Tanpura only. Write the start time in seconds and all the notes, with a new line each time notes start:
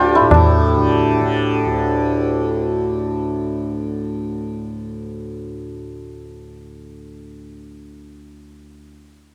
Already playing: D2 A2 D3
0.20 A2
0.30 A2
0.76 D3
1.20 D3
1.65 D2